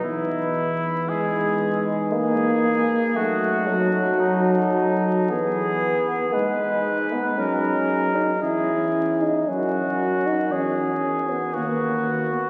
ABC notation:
X:1
M:3/4
L:1/16
Q:1/4=58
K:Elyd
V:1 name="French horn section"
B4 B8 | =A8 B4 | B4 G4 G4 | A4 A4 B4 |]
V:2 name="Cornet"
E4 G3 z G4 | F4 D4 G4 | B4 A4 G3 z | F4 G4 F4 |]
V:3 name="Euphonium"
D3 z D8 | D8 G4 | D8 C4 | F8 F4 |]
V:4 name="Euphonium"
z4 G,4 A,4 | =A,2 F,6 B,4 | G,3 B, C3 D E3 D | C3 D C3 B, A,3 B, |]
V:5 name="Tuba" clef=bass
E,,8- E,,3 z | F,,8 E,,4 | G,,4 F,,4 E,,4 | F,,4 E,,4 D,,4 |]